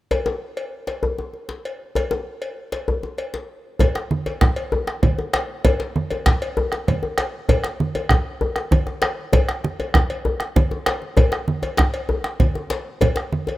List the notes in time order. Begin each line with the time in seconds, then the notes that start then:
0.11 cowbell, djembe bass
0.26 djembe slap, djembe tone
0.57 cowbell
0.87 cowbell, djembe slap
1.03 djembe bass
1.19 djembe tone
1.33 djembe slap
1.49 djembe slap
1.65 cowbell
1.95 cowbell, djembe bass
2.11 djembe slap, djembe tone
2.42 cowbell
2.72 cowbell, djembe slap
2.88 djembe bass
3.03 djembe tone
3.18 cowbell, djembe slap
3.34 djembe slap
3.79 bombo rim, bombo low, cowbell, djembe bass, low conga
3.95 bombo rim, djembe slap
4.11 high conga
4.26 cowbell, djembe tone
4.41 bombo rim, bombo low, djembe slap, low conga
4.56 cowbell
4.72 high conga, djembe bass
4.87 bombo rim, djembe slap
5.03 bombo rim, bombo low, cowbell, high conga, low conga
5.18 bombo rim, djembe tone
5.33 bombo rim, cowbell, djembe slap, high conga
5.65 bombo rim, bombo low, cowbell, low conga, djembe bass
5.80 djembe slap
5.96 high conga
6.11 cowbell, djembe tone
6.26 bombo rim, bombo low, djembe slap, low conga
6.42 cowbell
6.57 high conga, djembe bass
6.72 bombo rim, djembe slap
6.88 bombo rim, cowbell, high conga, low conga
7.03 bombo rim, djembe tone
7.18 bombo rim, cowbell, djembe slap, high conga
7.49 bombo rim, bombo low, cowbell, djembe bass, low conga
7.64 bombo rim, djembe slap
7.80 high conga
7.95 cowbell, djembe tone
8.09 bombo rim, bombo low, djembe slap, low conga
8.41 high conga, djembe bass
8.56 bombo rim, djembe slap
8.71 bombo rim, bombo low, cowbell, high conga, low conga
8.87 bombo rim, djembe tone
9.02 bombo rim, cowbell, djembe slap, high conga
9.33 bombo rim, bombo low, cowbell, high conga, djembe bass, low conga
9.48 bombo rim, djembe slap, high conga
9.64 bombo rim, high conga
9.80 cowbell, djembe tone
9.94 bombo rim, bombo low, djembe slap, low conga
10.10 cowbell, high conga
10.25 djembe bass
10.40 bombo rim, djembe slap
10.56 bombo rim, bombo low, cowbell, djembe slap, high conga, low conga
10.71 djembe tone
10.86 bombo rim, cowbell, djembe slap
11.02 djembe slap, high conga
11.17 bombo rim, bombo low, cowbell, djembe bass, low conga
11.32 bombo rim, djembe slap
11.48 high conga
11.63 cowbell, djembe tone
11.77 bombo rim, bombo low, djembe slap, low conga
11.94 cowbell
12.09 high conga, djembe bass
12.24 bombo rim, djembe slap
12.40 bombo rim, bombo low, cowbell, high conga, low conga
12.55 bombo rim, djembe tone
12.70 cowbell, djembe slap, high conga
13.01 bombo rim, bombo low, cowbell, djembe bass, low conga
13.16 bombo rim, djembe slap
13.32 high conga
13.47 cowbell, djembe tone